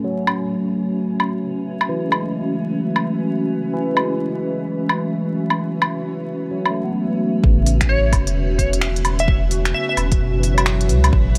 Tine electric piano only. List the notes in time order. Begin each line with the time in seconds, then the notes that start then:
Already playing: A3
0.04 F#3
1.89 E3
2.09 G#3
2.23 A3
3.74 E3
3.94 G#3
6.51 F#3
6.71 A3
6.84 B3
7.43 C#3
10.20 B2
10.40 E3
10.54 F#3